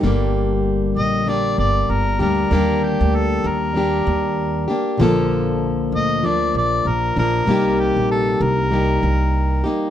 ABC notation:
X:1
M:4/4
L:1/16
Q:"Swing 16ths" 1/4=97
K:Gm
V:1 name="Harmonica"
z6 e2 d2 d2 B2 B2- | B2 G2 A2 B8 z2 | z6 e2 d2 d2 B2 B2- | B2 G2 A2 B8 z2 |]
V:2 name="Steel-string acoustic guitar"
[G,,D,G,B,G]8 [G,B,DG]6 [G,B,DG]2 | [G,B,DG]8 [G,B,DG]6 [B,DG]2 | [B,,D,F,B,A]8 [F,B,D]6 [F,B,D]2 | [C,G,B,EG]8 [G,B,EG]6 [B,EG]2 |]
V:3 name="Upright bass" clef=bass
G,,,6 B,,,4 G,,,2 G,,,2 D,,2 | E,,3 D,,3 E,,4 E,,4 z2 | B,,,6 D,,4 B,,,2 B,,,2 B,,,2 | C,,3 B,,,3 C,,4 C,,4 z2 |]